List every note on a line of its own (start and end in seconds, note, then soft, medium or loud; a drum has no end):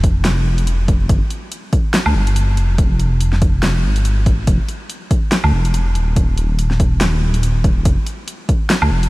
0.00 0.87 F1 loud
0.00 kick loud
0.00 closed hi-hat medium
0.25 snare loud
0.25 closed hi-hat medium
0.58 closed hi-hat medium
0.67 closed hi-hat medium
0.88 1.08 F1 loud
0.88 kick loud
0.88 closed hi-hat medium
1.09 1.21 G1 loud
1.09 kick loud
1.09 closed hi-hat medium
1.30 closed hi-hat soft
1.52 closed hi-hat medium
1.73 kick loud
1.73 closed hi-hat medium
1.94 snare loud
1.94 closed hi-hat medium
2.06 2.14 D2 loud
2.06 low woodblock soft
2.15 2.59 G1 medium
2.27 closed hi-hat medium
2.36 closed hi-hat medium
2.57 3.85 F1 loud
2.57 closed hi-hat medium
2.78 kick loud
2.78 closed hi-hat medium
2.99 closed hi-hat soft
3.21 closed hi-hat medium
3.33 snare soft
3.42 kick loud
3.42 closed hi-hat medium
3.63 snare loud
3.63 closed hi-hat medium
3.84 4.46 G#1 medium
3.96 closed hi-hat soft
4.05 closed hi-hat medium
4.26 kick loud
4.26 closed hi-hat soft
4.47 4.59 F1 medium
4.47 kick loud
4.47 closed hi-hat medium
4.68 closed hi-hat soft
4.90 closed hi-hat medium
5.11 kick loud
5.11 closed hi-hat medium
5.32 snare loud
5.32 closed hi-hat medium
5.44 5.52 D2 loud
5.44 low woodblock soft
5.53 5.97 F1 medium
5.65 closed hi-hat soft
5.74 closed hi-hat medium
5.95 7.63 D#1 loud
5.95 closed hi-hat medium
6.16 kick loud
6.16 closed hi-hat medium
6.37 closed hi-hat soft
6.59 closed hi-hat medium
6.71 snare soft
6.80 kick loud
6.80 closed hi-hat soft
7.01 snare loud
7.01 closed hi-hat medium
7.34 closed hi-hat soft
7.43 closed hi-hat medium
7.64 7.84 D#1 loud
7.64 kick loud
7.64 closed hi-hat soft
7.85 7.97 F1 loud
7.85 kick loud
7.85 closed hi-hat medium
8.06 closed hi-hat medium
8.28 closed hi-hat medium
8.49 kick medium
8.49 closed hi-hat medium
8.70 snare loud
8.70 closed hi-hat medium
8.82 8.90 D2 loud
8.82 low woodblock medium
8.91 9.09 F1 medium
9.03 closed hi-hat soft